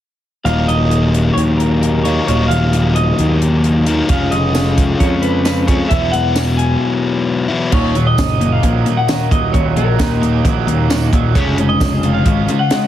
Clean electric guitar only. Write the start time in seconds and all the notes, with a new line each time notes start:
0.45 F5
0.68 D#5
1.33 C#5
1.57 A#4
1.81 A#4
2.03 C#5
2.28 C#5
2.48 F5
2.95 D#5
4.10 F5
4.31 D#5
5.00 C#5
5.22 B4
5.45 B4
5.68 C#5
5.89 E5
6.12 F#5
6.57 G#5
7.74 C#5
8.07 D#5
8.52 F5
8.97 F#5
9.31 D#5
9.53 C#5
9.77 A#4
11.35 C#5
11.69 D#5
12.14 F5
12.59 F#5